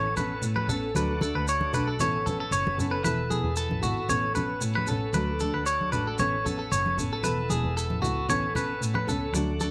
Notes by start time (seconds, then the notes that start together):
Already playing: A1 B3 C#4 A4 C#5
0.16 B3 C#4 A4 B4, high conga, low conga, maracas
0.42 A2, maracas
0.56 B4, high conga
0.68 A1 B3 C#4 A4, low conga, maracas
0.95 D2 F#3 A3 D4 F#4 A4 B4, high conga, maracas
1.21 A3 D4 A4, high conga, maracas
1.35 D2 B4
1.48 C#5, maracas
1.61 high conga
1.73 B1 A3 D4 A4 B4, low conga, maracas
1.87 A4
2.00 A1 E3 B3 C#4 A4 C#5, low conga, maracas
2.26 B3 C#4 A4, high conga, low conga, maracas
2.40 A4
2.51 F#1 C#5, maracas
2.67 high conga
2.78 F#1 B3 C#4 A4, low conga, maracas
2.91 B4
3.03 E1 E3 B3 E4 A4 B4, high conga, maracas
3.30 E1 B3 E4 G#4 A4, high conga, maracas
3.44 E2
3.56 A4, maracas
3.70 A1, high conga
3.82 G#1 B3 E4 F#4 A4, low conga, maracas
4.08 A1 E3 B3 C#4 A4 C#5, low conga, maracas
4.34 B3 C#4 A4 B4, high conga, low conga, maracas
4.61 A2, maracas
4.75 B4, high conga
4.87 A1 B3 C#4 A4, low conga, maracas
5.12 D2 F#3 A3 D4 F#4 A4 B4, high conga, maracas
5.40 A3 D4 A4, high conga, maracas
5.53 D2 B4
5.66 C#5, maracas
5.81 high conga
5.92 A1 A3 D4 A4 B4, low conga, maracas
6.07 A4
6.16 A1 E3 B3 C#4 A4 C#5, low conga, maracas
6.44 B3 C#4 A4, high conga, low conga, maracas
6.59 A4
6.72 F#1 C#5, maracas
6.86 high conga
6.97 A1 B3 C#4 A4, low conga, maracas
7.13 A4
7.22 E1 E3 B3 E4 A4 B4, high conga, maracas
7.50 E1 B3 E4 G#4 A4, high conga, maracas
7.64 E2
7.77 A4, maracas
7.90 A1, high conga
8.02 C#2 B3 E4 F#4 A4, low conga, maracas
8.29 A1 E3 B3 C#4 A4 C#5, low conga, maracas
8.55 B3 C#4 A4 B4, high conga, low conga, maracas
8.81 A2, maracas
8.95 B4, high conga
9.07 C#2 B3 C#4 A4, low conga, maracas
9.33 D2 F#3 A3 D4 F#4 A4, muted clean electric guitar stroke, high conga, maracas
9.60 A3 D4 A4, high conga, maracas